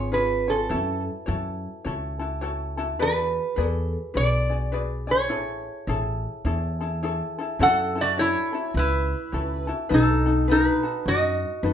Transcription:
Already playing: G#1 F4 G#4 C#5
0.12 F4 G#4 B4 C#5
0.48 F4 G#4 A4 C#5
0.69 F#2 E4 F#4 A4 C#5
1.26 F#2 E4 F#4 A4 C#5
1.85 C#2 E4 F#4 A4 C#5
2.19 E4 F#4 A4
2.41 E4 F#4 A4 C#5
2.77 E4 F#4 A4
2.99 E2 F#4 G#4 B4 D5
3.56 E2 F#4 G#4 B4 D5
3.65 A4
4.14 B1 F#4 G#4 B4 D5
4.50 F#4 G#4 D5
4.72 F#4 G#4 B4 D5
5.07 F#4 G#4 C#5 D5
5.29 A1 E4 G#4 A4 C#5
5.87 A1 E4 G#4 A4 C#5
6.45 E2 E4 G#4 A4 C#5
6.81 E4 G#4 A4
7.03 E4 G#4 A4 C#5
7.39 E4 G#4 A4
7.59 F#2 E4 F#4 A4 C#5 F#5
7.95 E4 F#4 A4
8.01 F#4 D5
8.18 E4 F#4 A4 C#5
8.53 E4 F#4 A4
8.74 C#2 B4
8.79 E4
9.32 C#2 E4 F#4 A4 C#5
9.67 E4 F#4 A4
9.89 B1 D#4 F#4 A4 B4
9.94 D#4 A4
10.26 D#4 F#4 A4
10.48 D#4 F#4 A4 B4
10.83 D#4 F#4 A4
11.06 F#2 F#4 D#5
11.63 F#2 D#4 F#4 A4 B4

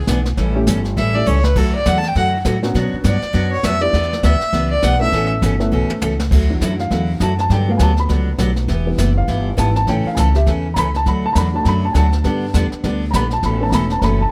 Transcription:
0.07 B1 E3 B3 D4 G#4, kick, snare, hi-hat pedal
0.25 snare
0.37 A1 E3 G3 C#4 E4 A4, brush sweep, kick, snare
0.55 G3 A3 C#4 E4 G4
0.67 G1 E3 G3 C#4 E4 A4, kick, snare, hi-hat pedal
0.85 snare
0.97 A1 E3 G3 C#4 E4 A4 E5, brush sweep, kick, snare
1.14 G3 A3 C#4 E4 G4 D5
1.26 C#2 E3 G3 C#4 E4 A4 C#5, hi-hat pedal
1.44 B4, snare
1.55 D2 D3 F#3 A3 E4 F#4 A4, brush sweep, kick, snare, crash
1.75 D5
1.85 E2 D3 F#3 A3 E4 F#4 F#5, kick, snare, hi-hat pedal
1.98 A5
2.03 snare
2.07 G5
2.15 F#2 D3 F#3 A3 E4 F#4 F#5, brush sweep, kick, snare
2.45 A2 D3 F#3 A3 E4 F#4, kick, snare, hi-hat pedal
2.63 F#3 B3 C#4 D4 F#4, snare
2.74 B2 F#3 B3 D4 F#4 C#5, brush sweep, kick, snare
2.93 muted upright bass stroke
3.04 G2 B2 F#3 B3 D4 F#4 C#5 D5, kick, snare, hi-hat pedal
3.22 muted upright bass stroke, snare
3.33 F#2 B2 F#3 B3 D4 F#4 C#5, brush sweep, kick, snare
3.52 C#5
3.63 F2 B2 F#3 B3 D4 F#4 C#5 E5, kick, snare, hi-hat pedal
3.81 G3 B3 D4 E4 G4 D5
3.93 E2 E3 B3 D4 G4, brush sweep, kick, snare
4.03 snare
4.13 snare
4.23 D2 E3 B3 D4 G4 E5, kick, snare, hi-hat pedal
4.41 muted upright bass stroke, snare
4.53 C#2 E3 B3 D4 G4, brush sweep, kick, snare
4.71 D5
4.82 B1 E3 B3 D4 G4 F#5, kick, snare, hi-hat pedal
5.00 A3 B3 C#4 E4 A4 E5
5.12 A1 B2 E3 A3 C#4 A4, brush sweep, kick, snare
5.42 G1 B2 E3 A3 C#4 A4, kick, snare, hi-hat pedal
5.60 A3 B3 C#4 E4 A4, snare
5.72 B1 B2 E3 A3 C#4 A4
5.90 muted upright bass stroke, high tom
6.01 C#2 B2 E3 A3 C#4 A4, hi-hat pedal, high tom
6.20 snare
6.31 D2 D3 F#3 A3 E4 F#4, brush sweep, kick, snare, crash
6.49 E3 F#3 D4
6.61 F#2 D3 F#3 A3 E4 F#4, kick, snare, hi-hat pedal
6.79 F5, snare
6.91 E2 D3 F#3 A3 E4 F#4, brush sweep, kick, snare
7.20 F#2 D3 F#3 A3 E4 F#4 A5, kick, snare, hi-hat pedal
7.38 A5, snare
7.50 G2 D3 F#3 B3 D4 G4 G5, brush sweep, kick, snare
7.68 F#3 A3 B3 F5
7.77 D2 D3 F#3 B3 D4 G4 G#5, kick, snare, hi-hat pedal
7.82 A5
7.97 B5, snare
8.09 C#2 D3 F#3 B3 D4 G4, brush sweep, kick, snare
8.38 B1 D3 F#3 B3 D4 G4, kick, snare, hi-hat pedal
8.56 snare
8.68 E1 E3 B3 E4 G4, brush sweep, kick, snare
8.86 E3 G3 B3
8.98 F#1 E3 B3 E4 G4, kick, snare, hi-hat pedal
9.18 F5
9.28 G1 E3 B3 E4 G4, brush sweep, kick, snare
9.57 G#1 E3 G3 B3 E4 G4 A5, kick, snare, hi-hat pedal
9.75 A5, snare
9.87 A1 C#3 E3 A3 C#4 A4 G5, brush sweep, kick, snare
10.05 F5, muted upright bass stroke
10.15 C#2 C#3 E3 A3 C#4 A4 G#5, kick, snare, hi-hat pedal
10.19 A5
10.35 G4 E5, snare
10.46 E2 C#3 E3 A3 C#4 A4, brush sweep, kick, snare
10.74 C#2 C#3 E3 A3 C#4 A4 A#5, kick, snare, hi-hat pedal
10.78 B5
10.94 A5, snare
11.06 D2 D3 F#3 A3 D4 F#4 B5, brush sweep, kick, snare
11.26 A5
11.33 E2 D3 F#3 A3 A#5, kick, snare, hi-hat pedal
11.37 D4 F#4 B5
11.54 F#3 A3 D4 A5
11.63 F#2 D3 F#3 A3 D4 F#4 A#5, brush sweep, kick, snare
11.68 B5
11.85 A5
11.92 D2 D3 F#3 A3 D4 F#4 G#5, kick, snare, hi-hat pedal
11.97 A5
12.12 snare
12.24 G2 D3 G3 B3 D4 G4, brush sweep, kick, snare
12.54 E2 D3 G3 B3 D4 G4, kick, snare, hi-hat pedal
12.72 muted upright bass stroke, snare
12.84 D2 D3 G3 B3 D4 G4, brush sweep, kick, snare
13.11 A#1 D3 G3 A#5, kick, snare, hi-hat pedal
13.15 B3 D4 G4 B5
13.31 A5, snare
13.43 A1 B2 E3 A3 C#4 A4 B5, brush sweep, kick, snare
13.61 A3 B3 C#4 A5
13.70 E1 B2 E3 A#5, kick, snare, hi-hat pedal
13.74 A3 C#4 A4 B5
13.90 A5, snare
13.99 F#1 B2 E3 A3 B3 C#4 A#5, brush sweep, kick, snare
14.03 C#4 A4 B5
14.21 A5

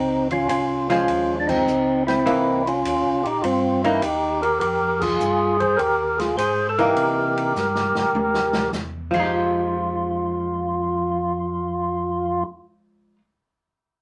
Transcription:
Already playing: C#2 C4 D#4
0.30 C#4 F4, kick, ride
0.49 C2 C#4 F4, kick, hi-hat pedal, ride
0.90 F3 G#3 C#4 F4, snare, ride
1.08 D#2, kick, ride
1.40 D4
1.47 C4 D#4, kick, crash
1.68 C#2, hi-hat pedal
2.07 C4 E4, snare, ride
2.26 C2 E3 A#3 D#4, kick, ride
2.66 C#4 F4, ride
2.84 D#2, kick, hi-hat pedal, ride
3.05 C2
3.24 A#1 D#4 G4, ride
3.42 G2 C4 F4, kick, ride
3.83 E3 A#3 C#4 D#4 E4, ride
4.02 D#2 D#4 G4, kick, hi-hat pedal, ride
4.42 G4 A#4, ride
4.60 F2 G4 A#4, kick, ride
5.00 F4 G#4, kick, crash
5.20 G2, hi-hat pedal
5.60 G#4 C5, kick, ride
5.77 D#2 G4 A#4, kick, ride
6.18 F4 G#4, snare, ride
6.37 G#2 G#4 C5, kick, hi-hat pedal, ride
6.69 A4
6.78 E3 A#3 D#4 G4 A#4, ride
6.96 C3, kick, ride
7.37 ride
7.55 G2, snare, hi-hat pedal
7.75 snare
7.95 G2, snare
8.13 D#2, high tom
8.34 snare
8.53 snare
8.72 E2, snare, hi-hat pedal
9.11 F2 F3 F4, kick, crash
9.15 G#3
9.19 D#4 G4

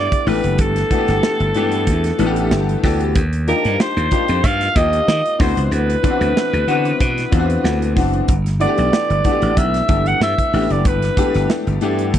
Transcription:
Already playing: E3 A3 B3 D4 G4 D5
0.12 kick, closed hi-hat
0.26 A1 E3 A3 B3 D4 G4 B4, open hi-hat
0.44 F#1, closed hi-hat
0.58 G1 A4, kick, closed hi-hat
0.76 snare, closed hi-hat
0.91 E3 A3 B3 D4 F#4, kick, closed hi-hat
0.98 G4
1.08 G1, snare, closed hi-hat
1.23 snare
1.40 G1, closed hi-hat
1.55 G2 E3 A3 B3 D4 G4, closed hi-hat
1.72 closed hi-hat
1.87 E2, kick, closed hi-hat
2.04 snare, closed hi-hat
2.18 A1 E3 A3 B3 D4 F#4, closed hi-hat
2.26 G4
2.36 closed hi-hat
2.51 G1 A5, snare
2.69 closed hi-hat
2.83 D2 E3 A3 B3 D4 G4 E5, kick, snare, open hi-hat
3.01 closed hi-hat
3.15 D#2, kick, closed hi-hat
3.33 closed hi-hat
3.47 F3 A#3 D4 D#4 G4 A#4, closed hi-hat
3.65 G2, closed hi-hat
3.80 C5, snare
3.97 D#2, closed hi-hat
4.11 F3 A#3 D4 D#4 G4, kick, closed hi-hat
4.28 F2, closed hi-hat
4.44 G2 F5, kick, closed hi-hat
4.61 snare, closed hi-hat
4.75 D#2 F3 A#3 D#4 F4 G4 D#5, kick, closed hi-hat
4.93 closed hi-hat
5.08 D#3, snare
5.26 closed hi-hat
5.39 D2 E3 B3 C4 D4 F#4 C5, kick, snare, open hi-hat
5.57 C#2, closed hi-hat
5.66 C5
5.71 D2 B4, closed hi-hat
5.90 closed hi-hat
6.03 E3 B3 C4 D4 E4, kick, closed hi-hat
6.11 F#4
6.21 D2, closed hi-hat
6.37 snare
6.53 D2, closed hi-hat
6.67 D3 E3 B3 C4 D4 F#4, closed hi-hat
6.85 closed hi-hat
7.00 B2, kick, closed hi-hat
7.18 snare, closed hi-hat
7.31 E2 E3 B3 C4 D4 F4, kick, closed hi-hat
7.39 F#4
7.50 closed hi-hat
7.64 D2, snare
7.82 closed hi-hat
7.96 F#1 E3 B3 C4 D4 F#4, kick, snare, open hi-hat
8.14 closed hi-hat
8.28 G1, kick, closed hi-hat
8.46 snare, closed hi-hat
8.59 E3 A3 B3 D4 F#4 D5, closed hi-hat
8.67 G4
8.78 B1, closed hi-hat
8.93 snare
9.10 G1, closed hi-hat
9.24 E3 A3 B3 D4 F#4, kick, closed hi-hat
9.32 G4
9.42 A1, closed hi-hat
9.57 B1 E5, kick, closed hi-hat
9.74 snare, closed hi-hat
9.88 G1 E3 A3 B3 D4 G4, kick, closed hi-hat
10.06 F#5, closed hi-hat
10.21 G2 E5, snare
10.38 kick, closed hi-hat
10.53 A1 E3 A3 B3 D4 G4, open hi-hat
10.70 F#1 D5, closed hi-hat
10.85 G1 B4, kick, closed hi-hat
11.02 snare, closed hi-hat
11.17 E3 A3 B3 D4 G4, kick, closed hi-hat
11.34 G1, snare, closed hi-hat
11.50 snare
11.67 G1, closed hi-hat
11.81 G2 E3 A3 B3 D4 G4, closed hi-hat
11.99 closed hi-hat
12.14 E2, kick, closed hi-hat

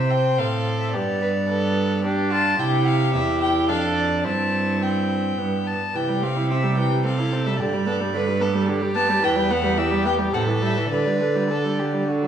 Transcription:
Already playing: C3 C4 C5 E5
0.10 G5
0.38 A2 A4 F5
0.80 E5
0.93 G2 B3 G4 D5
1.22 B4
1.49 B3 A4
2.04 D4 G4
2.31 F4 A5
2.59 C3 E4 G4 G5
2.86 F5
3.14 E2 E4 E5
3.41 G5
3.68 F2 D4 A4 F5
3.96 D5
4.24 G2 C4 E4 A5
4.81 C4 G5
5.38 G2 B3
5.67 A5
5.94 C3 E3 G4 G5
6.09 G3
6.22 C4 F5
6.36 E4
6.50 C4 E5
6.64 G3
6.77 E3 G5
6.91 G3
7.05 C4 A4 F5
7.19 E4
7.33 C4
7.46 G3 E5
7.59 G2 D3 G4 D5
7.74 G3
7.87 B3 A4
8.00 G3
8.14 D3 B4
8.28 G3
8.41 B3 A4
8.55 G3
8.68 D3 G4
8.82 G3
8.96 B3 A5
9.09 G3
9.22 E2 E3 B4 G5
9.36 G3
9.50 B3 F#5
9.64 G3
9.77 E3 G4 E5
9.91 G3
10.05 B3 G5
10.19 G3
10.33 A2 C3 A4 F#5
10.48 E3
10.62 G3 E5
10.76 E3
10.91 D3 B4 D5
11.06 G3
11.21 D3
11.35 G3
11.50 D3 A4
11.65 G3
11.79 D3 G4
11.94 G3
12.08 D3 F#4
12.23 F#3

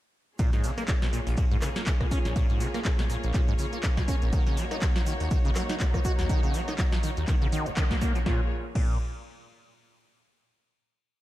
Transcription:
0.39 A#2 A#3 F4 G#4 C#5, kick, closed hi-hat, ride, shaker
0.53 G#2, snare, closed hi-hat, shaker
0.64 C#3, snare, open hi-hat, shaker
0.78 A#3, cross-stick, snare, closed hi-hat, shaker
0.88 C#3, kick, snare, clap, closed hi-hat, ride, shaker
1.02 B2, snare, closed hi-hat, shaker
1.13 A#2, open hi-hat, shaker
1.27 A#1, closed hi-hat, shaker
1.37 A#2, kick, closed hi-hat, ride, shaker
1.51 G#2, closed hi-hat, shaker
1.62 C#3, cross-stick, clap, open hi-hat, shaker
1.76 A#3, snare, closed hi-hat, shaker
1.86 C#3, kick, snare, clap, closed hi-hat, ride, shaker
2.01 B2, kick, cross-stick, closed hi-hat, shaker
2.11 C#4, kick, open hi-hat, shaker
2.25 A#1, snare, closed hi-hat, shaker
2.36 A#2, kick, closed hi-hat, ride, shaker
2.49 G#2, closed hi-hat, shaker
2.60 C#3, snare, open hi-hat, shaker
2.74 A#3, cross-stick, snare, closed hi-hat, shaker
2.85 C#3, kick, snare, clap, closed hi-hat, ride, shaker
2.99 B2, snare, closed hi-hat, shaker
3.10 A#2, open hi-hat, shaker
3.23 A#1, closed hi-hat, shaker
3.34 A#2, kick, clap, closed hi-hat, ride, shaker
3.48 G#2, closed hi-hat, shaker
3.58 C#3, open hi-hat, shaker
3.73 A#3, closed hi-hat, shaker
3.83 C#3, kick, cross-stick, snare, clap, closed hi-hat, ride, shaker
3.97 B2, kick, snare, closed hi-hat, shaker
4.08 C#4, kick, open hi-hat, shaker
4.22 A#1, snare, closed hi-hat, shaker
4.32 D#3 D#4 F#4, kick, closed hi-hat, ride, shaker
4.46 C#3, snare, closed hi-hat, shaker
4.57 F#3, snare, open hi-hat, shaker
4.71 D#4, cross-stick, snare, closed hi-hat, shaker
4.81 F#3, kick, snare, clap, closed hi-hat, ride, shaker
4.96 F3, snare, closed hi-hat, shaker
5.06 D#3, open hi-hat, shaker
5.20 D#2, closed hi-hat, shaker
5.31 D#3, kick, closed hi-hat, ride, shaker
5.45 C#3, closed hi-hat, shaker
5.55 F#3, cross-stick, clap, open hi-hat, shaker
5.69 D#4, snare, closed hi-hat, shaker
5.80 F#3, kick, snare, clap, closed hi-hat, ride, shaker
5.94 F3, kick, cross-stick, closed hi-hat, shaker
6.04 F#4, kick, open hi-hat, shaker
6.19 D#2, snare, closed hi-hat, shaker
6.29 D#3, kick, closed hi-hat, ride, shaker
6.43 C#3, closed hi-hat, shaker
6.54 F#3, snare, open hi-hat, shaker
6.67 D#4, cross-stick, snare, closed hi-hat, shaker
6.78 F#3, kick, snare, clap, closed hi-hat, ride, shaker
6.91 F3, snare, closed hi-hat, shaker
7.03 D#3, open hi-hat, shaker
7.17 D#2, closed hi-hat, shaker
7.27 D#3, kick, clap, closed hi-hat, ride, shaker
7.42 C#3, closed hi-hat, shaker
7.52 D#3, open hi-hat, shaker
7.66 D#2, closed hi-hat, shaker
7.77 D#3, kick, cross-stick, snare, clap, closed hi-hat, ride, shaker
7.90 A#3, kick, snare, closed hi-hat, shaker
8.01 A#3, kick, open hi-hat, shaker
8.15 F3, snare, closed hi-hat, shaker
8.26 A#2 A#3 F4 G#4 C#5, kick, snare
8.75 A#2, kick, crash

